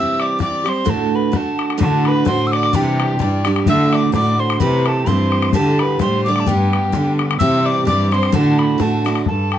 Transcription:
Already playing: steel-string acoustic guitar C3 E3 G3 C4 G4, fiddle E5, tin whistle E6
0.20 fiddle D5, tin whistle D6, bodhran
0.39 steel-string acoustic guitar E3 G3 C4 G4, fiddle D5, tin whistle D6, bodhran
0.64 steel-string acoustic guitar G3 C4 G4, bodhran
0.69 fiddle C5, tin whistle C6
0.85 steel-string acoustic guitar D2 A2 D3 A3 D4 F#4, bodhran
0.89 fiddle A4, tin whistle A5
1.14 fiddle B4, tin whistle B5
1.32 steel-string acoustic guitar D3 A3 D4 F#4, fiddle A4, bodhran
1.37 tin whistle A5
1.59 bodhran
1.70 bodhran
1.77 steel-string acoustic guitar D2 A2 D3 A3 D4 F#4, cello D3, bodhran
1.82 fiddle A4, tin whistle A5
2.05 fiddle B4, tin whistle B5, bodhran
2.25 cello A2, steel-string acoustic guitar D3 A3 D4 F#4, fiddle C5, tin whistle C6, bodhran
2.47 tin whistle E6
2.52 fiddle D5, tin whistle D6, bodhran
2.63 bodhran
2.73 steel-string acoustic guitar C3 E3 G3 D4 G4, cello C3, fiddle G4, tin whistle G5, bodhran
3.00 bodhran
3.19 cello G2, steel-string acoustic guitar E3 G3 D4 G4, fiddle D5, bodhran
3.45 steel-string acoustic guitar G3 D4 G4, bodhran
3.56 bodhran
3.66 steel-string acoustic guitar D2 A2 D3 A3 D4 F#4, cello D3, fiddle E5, tin whistle E6, bodhran
3.93 fiddle D5, tin whistle D6, bodhran
4.12 cello A2, steel-string acoustic guitar D3 A3 D4 F#4, fiddle D5, tin whistle D6, bodhran
4.39 fiddle C5, tin whistle C6
4.50 bodhran
4.60 steel-string acoustic guitar C3 E3 A3 C4 G4, cello C3, fiddle B4, tin whistle B5, bodhran
4.86 fiddle A4, tin whistle A5, bodhran
5.06 cello G2, steel-string acoustic guitar E3 A3 C4 G4, fiddle C5, tin whistle C6, bodhran
5.32 bodhran
5.42 bodhran
5.53 steel-string acoustic guitar D2 A2 D3 G3 A3 G4, cello D3, fiddle A4, tin whistle A5, bodhran
5.79 fiddle B4, tin whistle B5, bodhran
5.99 cello A2, steel-string acoustic guitar D3 G3 A3 G4, fiddle C5, tin whistle C6, bodhran
6.24 steel-string acoustic guitar A3 G4, fiddle D5, tin whistle D6
6.28 steel-string acoustic guitar D3 G3
6.36 bodhran
6.40 tin whistle A5
6.46 cello G2, steel-string acoustic guitar G3 B3 D4 G4, fiddle G4, tin whistle G5, bodhran
6.73 bodhran
6.92 cello D3, steel-string acoustic guitar G3 B3 D4 G4, bodhran
7.19 bodhran
7.31 bodhran
7.39 steel-string acoustic guitar C3 E3 G3 C4 G4, cello C3, fiddle E5, tin whistle E6, bodhran
7.65 fiddle D5, tin whistle D6
7.85 cello G2, steel-string acoustic guitar E3 G3 C4 G4, fiddle D5, tin whistle D6, bodhran
8.12 steel-string acoustic guitar G3 C4 G4, fiddle C5, tin whistle C6, bodhran
8.23 bodhran
8.32 steel-string acoustic guitar D2 A2 D3 A3 D4 F#4, cello D3, fiddle A4, tin whistle A5, bodhran
8.59 tin whistle B5, bodhran
8.78 cello A2, steel-string acoustic guitar D3 A3 D4 F#4, fiddle A4, tin whistle A5, bodhran
9.05 steel-string acoustic guitar D3 A3 D4 F#4, bodhran
9.15 bodhran
9.26 cello G2, fiddle A4, tin whistle A5, bodhran
9.52 tin whistle G5, bodhran

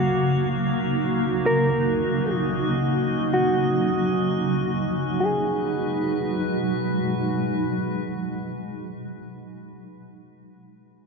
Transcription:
Already playing: ambient pad C#3 F#3 A#3 D#4 F#4, synth texture A#3 F#4 F5, clean electric guitar F#4
1.46 ambient pad F#3, synth texture C#4 D#5, clean electric guitar A#4
3.34 clean electric guitar F#4
5.20 ambient pad B2 F#3 G#3 D#4 F#4, synth texture G#3 F#4 B4, clean electric guitar G#4

